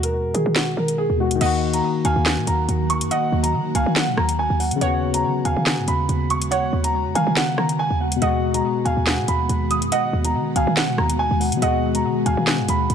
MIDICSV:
0, 0, Header, 1, 7, 480
1, 0, Start_track
1, 0, Key_signature, -6, "minor"
1, 0, Tempo, 425532
1, 1589, Time_signature, 4, 2, 24, 8
1, 14604, End_track
2, 0, Start_track
2, 0, Title_t, "Grand piano"
2, 0, Program_c, 0, 0
2, 38, Note_on_c, 0, 70, 84
2, 369, Note_off_c, 0, 70, 0
2, 384, Note_on_c, 0, 68, 81
2, 592, Note_off_c, 0, 68, 0
2, 627, Note_on_c, 0, 66, 79
2, 834, Note_off_c, 0, 66, 0
2, 876, Note_on_c, 0, 70, 77
2, 1080, Note_off_c, 0, 70, 0
2, 1107, Note_on_c, 0, 68, 90
2, 1315, Note_off_c, 0, 68, 0
2, 1356, Note_on_c, 0, 66, 78
2, 1559, Note_off_c, 0, 66, 0
2, 1596, Note_on_c, 0, 78, 101
2, 1938, Note_off_c, 0, 78, 0
2, 1959, Note_on_c, 0, 82, 85
2, 2290, Note_off_c, 0, 82, 0
2, 2315, Note_on_c, 0, 80, 83
2, 2764, Note_off_c, 0, 80, 0
2, 2788, Note_on_c, 0, 82, 84
2, 3240, Note_off_c, 0, 82, 0
2, 3270, Note_on_c, 0, 85, 74
2, 3476, Note_off_c, 0, 85, 0
2, 3509, Note_on_c, 0, 78, 106
2, 3855, Note_off_c, 0, 78, 0
2, 3869, Note_on_c, 0, 82, 88
2, 4205, Note_off_c, 0, 82, 0
2, 4233, Note_on_c, 0, 80, 82
2, 4438, Note_off_c, 0, 80, 0
2, 4474, Note_on_c, 0, 78, 84
2, 4678, Note_off_c, 0, 78, 0
2, 4706, Note_on_c, 0, 82, 79
2, 4914, Note_off_c, 0, 82, 0
2, 4952, Note_on_c, 0, 80, 89
2, 5157, Note_off_c, 0, 80, 0
2, 5186, Note_on_c, 0, 78, 71
2, 5394, Note_off_c, 0, 78, 0
2, 5433, Note_on_c, 0, 78, 95
2, 5776, Note_off_c, 0, 78, 0
2, 5798, Note_on_c, 0, 82, 90
2, 6129, Note_off_c, 0, 82, 0
2, 6150, Note_on_c, 0, 80, 86
2, 6601, Note_off_c, 0, 80, 0
2, 6632, Note_on_c, 0, 83, 80
2, 7082, Note_off_c, 0, 83, 0
2, 7113, Note_on_c, 0, 85, 75
2, 7318, Note_off_c, 0, 85, 0
2, 7343, Note_on_c, 0, 78, 114
2, 7691, Note_off_c, 0, 78, 0
2, 7715, Note_on_c, 0, 82, 92
2, 8048, Note_off_c, 0, 82, 0
2, 8067, Note_on_c, 0, 80, 85
2, 8274, Note_off_c, 0, 80, 0
2, 8308, Note_on_c, 0, 78, 85
2, 8515, Note_off_c, 0, 78, 0
2, 8555, Note_on_c, 0, 82, 79
2, 8759, Note_off_c, 0, 82, 0
2, 8789, Note_on_c, 0, 80, 94
2, 8996, Note_off_c, 0, 80, 0
2, 9029, Note_on_c, 0, 78, 70
2, 9236, Note_off_c, 0, 78, 0
2, 9270, Note_on_c, 0, 78, 100
2, 9615, Note_off_c, 0, 78, 0
2, 9636, Note_on_c, 0, 82, 78
2, 9968, Note_off_c, 0, 82, 0
2, 9985, Note_on_c, 0, 80, 82
2, 10439, Note_off_c, 0, 80, 0
2, 10471, Note_on_c, 0, 83, 79
2, 10922, Note_off_c, 0, 83, 0
2, 10949, Note_on_c, 0, 87, 79
2, 11155, Note_off_c, 0, 87, 0
2, 11189, Note_on_c, 0, 78, 110
2, 11535, Note_off_c, 0, 78, 0
2, 11560, Note_on_c, 0, 82, 82
2, 11890, Note_off_c, 0, 82, 0
2, 11919, Note_on_c, 0, 80, 77
2, 12121, Note_off_c, 0, 80, 0
2, 12151, Note_on_c, 0, 78, 88
2, 12357, Note_off_c, 0, 78, 0
2, 12384, Note_on_c, 0, 82, 77
2, 12592, Note_off_c, 0, 82, 0
2, 12625, Note_on_c, 0, 80, 99
2, 12833, Note_off_c, 0, 80, 0
2, 12865, Note_on_c, 0, 78, 75
2, 13073, Note_off_c, 0, 78, 0
2, 13108, Note_on_c, 0, 78, 106
2, 13454, Note_off_c, 0, 78, 0
2, 13480, Note_on_c, 0, 82, 84
2, 13810, Note_off_c, 0, 82, 0
2, 13827, Note_on_c, 0, 80, 80
2, 14280, Note_off_c, 0, 80, 0
2, 14317, Note_on_c, 0, 83, 84
2, 14604, Note_off_c, 0, 83, 0
2, 14604, End_track
3, 0, Start_track
3, 0, Title_t, "Synth pluck"
3, 0, Program_c, 1, 84
3, 1590, Note_on_c, 1, 75, 108
3, 2267, Note_off_c, 1, 75, 0
3, 2311, Note_on_c, 1, 77, 80
3, 2538, Note_off_c, 1, 77, 0
3, 2550, Note_on_c, 1, 78, 90
3, 3465, Note_off_c, 1, 78, 0
3, 3510, Note_on_c, 1, 75, 108
3, 4187, Note_off_c, 1, 75, 0
3, 4230, Note_on_c, 1, 77, 77
3, 4458, Note_off_c, 1, 77, 0
3, 4469, Note_on_c, 1, 78, 87
3, 5385, Note_off_c, 1, 78, 0
3, 5430, Note_on_c, 1, 73, 116
3, 6107, Note_off_c, 1, 73, 0
3, 6150, Note_on_c, 1, 77, 80
3, 6378, Note_off_c, 1, 77, 0
3, 6391, Note_on_c, 1, 78, 84
3, 7305, Note_off_c, 1, 78, 0
3, 7350, Note_on_c, 1, 73, 110
3, 8027, Note_off_c, 1, 73, 0
3, 8071, Note_on_c, 1, 77, 79
3, 8299, Note_off_c, 1, 77, 0
3, 8310, Note_on_c, 1, 78, 88
3, 9225, Note_off_c, 1, 78, 0
3, 9271, Note_on_c, 1, 75, 110
3, 9947, Note_off_c, 1, 75, 0
3, 9991, Note_on_c, 1, 77, 80
3, 10219, Note_off_c, 1, 77, 0
3, 10231, Note_on_c, 1, 78, 88
3, 11145, Note_off_c, 1, 78, 0
3, 11191, Note_on_c, 1, 75, 103
3, 11867, Note_off_c, 1, 75, 0
3, 11911, Note_on_c, 1, 77, 83
3, 12138, Note_off_c, 1, 77, 0
3, 12151, Note_on_c, 1, 78, 86
3, 13065, Note_off_c, 1, 78, 0
3, 13110, Note_on_c, 1, 75, 107
3, 13787, Note_off_c, 1, 75, 0
3, 13830, Note_on_c, 1, 77, 91
3, 14058, Note_off_c, 1, 77, 0
3, 14071, Note_on_c, 1, 78, 86
3, 14604, Note_off_c, 1, 78, 0
3, 14604, End_track
4, 0, Start_track
4, 0, Title_t, "Ambient pad"
4, 0, Program_c, 2, 92
4, 1591, Note_on_c, 2, 51, 81
4, 1591, Note_on_c, 2, 54, 77
4, 1591, Note_on_c, 2, 58, 76
4, 1591, Note_on_c, 2, 66, 90
4, 5392, Note_off_c, 2, 51, 0
4, 5392, Note_off_c, 2, 54, 0
4, 5392, Note_off_c, 2, 58, 0
4, 5392, Note_off_c, 2, 66, 0
4, 5430, Note_on_c, 2, 49, 84
4, 5430, Note_on_c, 2, 56, 77
4, 5430, Note_on_c, 2, 59, 75
4, 5430, Note_on_c, 2, 66, 92
4, 9232, Note_off_c, 2, 49, 0
4, 9271, Note_on_c, 2, 51, 82
4, 14604, Note_off_c, 2, 51, 0
4, 14604, Note_off_c, 2, 56, 0
4, 14604, Note_off_c, 2, 59, 0
4, 14604, Note_off_c, 2, 66, 0
4, 14604, End_track
5, 0, Start_track
5, 0, Title_t, "Tine electric piano"
5, 0, Program_c, 3, 4
5, 0, Control_c, 3, 64, 127
5, 0, Note_on_c, 3, 47, 69
5, 0, Note_on_c, 3, 56, 62
5, 0, Note_on_c, 3, 66, 70
5, 1275, Note_off_c, 3, 47, 0
5, 1305, Note_off_c, 3, 56, 0
5, 1322, Note_on_c, 3, 47, 51
5, 1335, Note_off_c, 3, 66, 0
5, 1352, Note_on_c, 3, 56, 49
5, 1382, Note_on_c, 3, 66, 57
5, 1526, Note_on_c, 3, 51, 73
5, 1576, Note_off_c, 3, 47, 0
5, 1586, Note_on_c, 3, 58, 57
5, 1591, Note_off_c, 3, 56, 0
5, 1605, Control_c, 3, 64, 0
5, 1606, Note_off_c, 3, 66, 0
5, 1647, Note_on_c, 3, 66, 75
5, 1827, Control_c, 3, 64, 127
5, 5353, Note_off_c, 3, 51, 0
5, 5371, Note_on_c, 3, 49, 71
5, 5383, Note_off_c, 3, 58, 0
5, 5413, Note_off_c, 3, 66, 0
5, 5431, Note_on_c, 3, 59, 61
5, 5445, Control_c, 3, 64, 0
5, 5491, Note_on_c, 3, 66, 74
5, 5626, Control_c, 3, 64, 127
5, 9195, Note_off_c, 3, 49, 0
5, 9210, Note_on_c, 3, 47, 67
5, 9225, Note_off_c, 3, 59, 0
5, 9255, Note_off_c, 3, 66, 0
5, 9271, Note_on_c, 3, 56, 64
5, 9287, Control_c, 3, 64, 0
5, 9331, Note_on_c, 3, 66, 76
5, 9472, Control_c, 3, 64, 127
5, 13035, Note_off_c, 3, 47, 0
5, 13051, Note_on_c, 3, 47, 69
5, 13065, Note_off_c, 3, 56, 0
5, 13095, Note_off_c, 3, 66, 0
5, 13111, Note_on_c, 3, 56, 65
5, 13171, Note_on_c, 3, 66, 74
5, 14604, Note_off_c, 3, 47, 0
5, 14604, Note_off_c, 3, 56, 0
5, 14604, Note_off_c, 3, 66, 0
5, 14604, End_track
6, 0, Start_track
6, 0, Title_t, "808-style bass"
6, 0, Program_c, 4, 38
6, 0, Note_on_c, 4, 39, 107
6, 278, Note_on_c, 4, 41, 100
6, 295, Note_off_c, 4, 39, 0
6, 385, Note_off_c, 4, 41, 0
6, 390, Note_on_c, 4, 51, 101
6, 512, Note_off_c, 4, 51, 0
6, 518, Note_on_c, 4, 51, 108
6, 856, Note_off_c, 4, 51, 0
6, 870, Note_on_c, 4, 51, 101
6, 1223, Note_off_c, 4, 51, 0
6, 1238, Note_on_c, 4, 39, 99
6, 1576, Note_off_c, 4, 39, 0
6, 1591, Note_on_c, 4, 39, 117
6, 2051, Note_off_c, 4, 39, 0
6, 2310, Note_on_c, 4, 39, 106
6, 2432, Note_off_c, 4, 39, 0
6, 2438, Note_on_c, 4, 39, 113
6, 2678, Note_on_c, 4, 46, 103
6, 2695, Note_off_c, 4, 39, 0
6, 2785, Note_off_c, 4, 46, 0
6, 2791, Note_on_c, 4, 39, 105
6, 3021, Note_off_c, 4, 39, 0
6, 3030, Note_on_c, 4, 39, 106
6, 3398, Note_on_c, 4, 42, 101
6, 3414, Note_off_c, 4, 39, 0
6, 3504, Note_off_c, 4, 42, 0
6, 3750, Note_on_c, 4, 39, 107
6, 3990, Note_on_c, 4, 51, 99
6, 4007, Note_off_c, 4, 39, 0
6, 4218, Note_off_c, 4, 51, 0
6, 4230, Note_on_c, 4, 37, 105
6, 4352, Note_off_c, 4, 37, 0
6, 4358, Note_on_c, 4, 51, 110
6, 4598, Note_on_c, 4, 46, 102
6, 4615, Note_off_c, 4, 51, 0
6, 4705, Note_off_c, 4, 46, 0
6, 4710, Note_on_c, 4, 39, 106
6, 5063, Note_off_c, 4, 39, 0
6, 5078, Note_on_c, 4, 39, 102
6, 5318, Note_on_c, 4, 54, 101
6, 5335, Note_off_c, 4, 39, 0
6, 5425, Note_off_c, 4, 54, 0
6, 5431, Note_on_c, 4, 39, 107
6, 5911, Note_on_c, 4, 51, 98
6, 5928, Note_off_c, 4, 39, 0
6, 6138, Note_off_c, 4, 51, 0
6, 6151, Note_on_c, 4, 39, 110
6, 6273, Note_off_c, 4, 39, 0
6, 6277, Note_on_c, 4, 51, 111
6, 6517, Note_on_c, 4, 42, 101
6, 6534, Note_off_c, 4, 51, 0
6, 6625, Note_off_c, 4, 42, 0
6, 6630, Note_on_c, 4, 39, 108
6, 6861, Note_off_c, 4, 39, 0
6, 6870, Note_on_c, 4, 39, 111
6, 7561, Note_off_c, 4, 39, 0
6, 7591, Note_on_c, 4, 39, 111
6, 7957, Note_on_c, 4, 41, 102
6, 7974, Note_off_c, 4, 39, 0
6, 8064, Note_off_c, 4, 41, 0
6, 8070, Note_on_c, 4, 51, 109
6, 8192, Note_off_c, 4, 51, 0
6, 8197, Note_on_c, 4, 51, 102
6, 8536, Note_off_c, 4, 51, 0
6, 8550, Note_on_c, 4, 51, 106
6, 8903, Note_off_c, 4, 51, 0
6, 8917, Note_on_c, 4, 39, 99
6, 9256, Note_off_c, 4, 39, 0
6, 9270, Note_on_c, 4, 39, 118
6, 9731, Note_off_c, 4, 39, 0
6, 9990, Note_on_c, 4, 39, 111
6, 10112, Note_off_c, 4, 39, 0
6, 10117, Note_on_c, 4, 39, 112
6, 10357, Note_on_c, 4, 46, 102
6, 10374, Note_off_c, 4, 39, 0
6, 10464, Note_off_c, 4, 46, 0
6, 10471, Note_on_c, 4, 39, 105
6, 10701, Note_off_c, 4, 39, 0
6, 10710, Note_on_c, 4, 39, 110
6, 11077, Note_on_c, 4, 42, 105
6, 11094, Note_off_c, 4, 39, 0
6, 11184, Note_off_c, 4, 42, 0
6, 11430, Note_on_c, 4, 39, 109
6, 11670, Note_on_c, 4, 51, 101
6, 11687, Note_off_c, 4, 39, 0
6, 11898, Note_off_c, 4, 51, 0
6, 11910, Note_on_c, 4, 37, 103
6, 12032, Note_off_c, 4, 37, 0
6, 12037, Note_on_c, 4, 51, 113
6, 12277, Note_on_c, 4, 46, 102
6, 12294, Note_off_c, 4, 51, 0
6, 12384, Note_off_c, 4, 46, 0
6, 12390, Note_on_c, 4, 39, 107
6, 12742, Note_off_c, 4, 39, 0
6, 12757, Note_on_c, 4, 39, 106
6, 12997, Note_on_c, 4, 54, 101
6, 13014, Note_off_c, 4, 39, 0
6, 13104, Note_off_c, 4, 54, 0
6, 13110, Note_on_c, 4, 39, 109
6, 13589, Note_on_c, 4, 51, 99
6, 13606, Note_off_c, 4, 39, 0
6, 13818, Note_off_c, 4, 51, 0
6, 13830, Note_on_c, 4, 39, 109
6, 13952, Note_off_c, 4, 39, 0
6, 13957, Note_on_c, 4, 51, 113
6, 14197, Note_on_c, 4, 42, 102
6, 14213, Note_off_c, 4, 51, 0
6, 14304, Note_off_c, 4, 42, 0
6, 14309, Note_on_c, 4, 39, 105
6, 14540, Note_off_c, 4, 39, 0
6, 14550, Note_on_c, 4, 39, 110
6, 14604, Note_off_c, 4, 39, 0
6, 14604, End_track
7, 0, Start_track
7, 0, Title_t, "Drums"
7, 37, Note_on_c, 9, 42, 85
7, 150, Note_off_c, 9, 42, 0
7, 390, Note_on_c, 9, 42, 69
7, 503, Note_off_c, 9, 42, 0
7, 630, Note_on_c, 9, 38, 125
7, 633, Note_on_c, 9, 42, 75
7, 743, Note_off_c, 9, 38, 0
7, 745, Note_off_c, 9, 42, 0
7, 996, Note_on_c, 9, 42, 82
7, 1109, Note_off_c, 9, 42, 0
7, 1477, Note_on_c, 9, 42, 85
7, 1590, Note_off_c, 9, 42, 0
7, 1590, Note_on_c, 9, 42, 86
7, 1590, Note_on_c, 9, 49, 105
7, 1703, Note_off_c, 9, 42, 0
7, 1703, Note_off_c, 9, 49, 0
7, 1957, Note_on_c, 9, 42, 89
7, 2070, Note_off_c, 9, 42, 0
7, 2310, Note_on_c, 9, 42, 73
7, 2423, Note_off_c, 9, 42, 0
7, 2550, Note_on_c, 9, 38, 127
7, 2662, Note_off_c, 9, 38, 0
7, 2790, Note_on_c, 9, 42, 83
7, 2902, Note_off_c, 9, 42, 0
7, 3030, Note_on_c, 9, 42, 63
7, 3143, Note_off_c, 9, 42, 0
7, 3269, Note_on_c, 9, 42, 68
7, 3382, Note_off_c, 9, 42, 0
7, 3397, Note_on_c, 9, 42, 90
7, 3509, Note_off_c, 9, 42, 0
7, 3510, Note_on_c, 9, 42, 87
7, 3622, Note_off_c, 9, 42, 0
7, 3877, Note_on_c, 9, 42, 90
7, 3990, Note_off_c, 9, 42, 0
7, 4230, Note_on_c, 9, 42, 72
7, 4342, Note_off_c, 9, 42, 0
7, 4469, Note_on_c, 9, 38, 124
7, 4472, Note_on_c, 9, 42, 77
7, 4582, Note_off_c, 9, 38, 0
7, 4585, Note_off_c, 9, 42, 0
7, 4709, Note_on_c, 9, 37, 98
7, 4822, Note_off_c, 9, 37, 0
7, 4836, Note_on_c, 9, 42, 87
7, 4949, Note_off_c, 9, 42, 0
7, 5189, Note_on_c, 9, 46, 47
7, 5302, Note_off_c, 9, 46, 0
7, 5316, Note_on_c, 9, 42, 88
7, 5429, Note_off_c, 9, 42, 0
7, 5430, Note_on_c, 9, 42, 89
7, 5542, Note_off_c, 9, 42, 0
7, 5797, Note_on_c, 9, 42, 91
7, 5910, Note_off_c, 9, 42, 0
7, 6150, Note_on_c, 9, 42, 73
7, 6262, Note_off_c, 9, 42, 0
7, 6390, Note_on_c, 9, 38, 126
7, 6502, Note_off_c, 9, 38, 0
7, 6629, Note_on_c, 9, 42, 84
7, 6742, Note_off_c, 9, 42, 0
7, 6870, Note_on_c, 9, 42, 60
7, 6983, Note_off_c, 9, 42, 0
7, 7109, Note_on_c, 9, 42, 67
7, 7222, Note_off_c, 9, 42, 0
7, 7237, Note_on_c, 9, 42, 88
7, 7350, Note_off_c, 9, 42, 0
7, 7350, Note_on_c, 9, 42, 87
7, 7463, Note_off_c, 9, 42, 0
7, 7717, Note_on_c, 9, 42, 89
7, 7830, Note_off_c, 9, 42, 0
7, 8070, Note_on_c, 9, 42, 72
7, 8183, Note_off_c, 9, 42, 0
7, 8310, Note_on_c, 9, 38, 126
7, 8312, Note_on_c, 9, 42, 76
7, 8423, Note_off_c, 9, 38, 0
7, 8425, Note_off_c, 9, 42, 0
7, 8550, Note_on_c, 9, 37, 96
7, 8662, Note_off_c, 9, 37, 0
7, 8676, Note_on_c, 9, 42, 82
7, 8789, Note_off_c, 9, 42, 0
7, 9157, Note_on_c, 9, 42, 88
7, 9269, Note_off_c, 9, 42, 0
7, 9270, Note_on_c, 9, 42, 84
7, 9383, Note_off_c, 9, 42, 0
7, 9637, Note_on_c, 9, 42, 90
7, 9750, Note_off_c, 9, 42, 0
7, 9990, Note_on_c, 9, 42, 69
7, 10102, Note_off_c, 9, 42, 0
7, 10229, Note_on_c, 9, 38, 123
7, 10342, Note_off_c, 9, 38, 0
7, 10469, Note_on_c, 9, 42, 84
7, 10582, Note_off_c, 9, 42, 0
7, 10710, Note_on_c, 9, 42, 64
7, 10823, Note_off_c, 9, 42, 0
7, 10949, Note_on_c, 9, 42, 69
7, 11062, Note_off_c, 9, 42, 0
7, 11076, Note_on_c, 9, 42, 88
7, 11189, Note_off_c, 9, 42, 0
7, 11190, Note_on_c, 9, 42, 85
7, 11302, Note_off_c, 9, 42, 0
7, 11557, Note_on_c, 9, 42, 86
7, 11670, Note_off_c, 9, 42, 0
7, 11909, Note_on_c, 9, 42, 69
7, 12022, Note_off_c, 9, 42, 0
7, 12149, Note_on_c, 9, 38, 125
7, 12152, Note_on_c, 9, 42, 76
7, 12262, Note_off_c, 9, 38, 0
7, 12265, Note_off_c, 9, 42, 0
7, 12389, Note_on_c, 9, 37, 94
7, 12502, Note_off_c, 9, 37, 0
7, 12516, Note_on_c, 9, 42, 86
7, 12629, Note_off_c, 9, 42, 0
7, 12869, Note_on_c, 9, 46, 48
7, 12982, Note_off_c, 9, 46, 0
7, 12996, Note_on_c, 9, 42, 90
7, 13109, Note_off_c, 9, 42, 0
7, 13109, Note_on_c, 9, 42, 87
7, 13222, Note_off_c, 9, 42, 0
7, 13477, Note_on_c, 9, 42, 88
7, 13590, Note_off_c, 9, 42, 0
7, 13829, Note_on_c, 9, 42, 71
7, 13942, Note_off_c, 9, 42, 0
7, 14069, Note_on_c, 9, 38, 127
7, 14182, Note_off_c, 9, 38, 0
7, 14309, Note_on_c, 9, 42, 86
7, 14422, Note_off_c, 9, 42, 0
7, 14550, Note_on_c, 9, 42, 61
7, 14604, Note_off_c, 9, 42, 0
7, 14604, End_track
0, 0, End_of_file